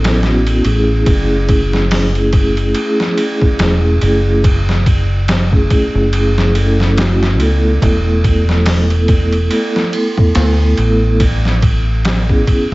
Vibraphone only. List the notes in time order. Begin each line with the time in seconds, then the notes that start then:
Already playing: B3 C#4 E4 A4
0.21 B3 C#4 E4 F#4
0.62 A3 C#4 E4 G#4
2.14 A3 C#4 E4 G#4
2.73 A3 C#4 E4 G#4
4.00 A3 C#4 E4 G#4
5.50 A3 C#4 E4
5.54 G#4
6.53 A3 C#4 E4 A4
6.96 A3 C#4 E4 F#4
7.38 A3 B3 E4 A4
8.90 A3 B3 E4 A4
9.49 A3 B3 E4
9.53 A4
10.77 A3 B3 E4 A4
12.27 B3 C#4 E4 G#4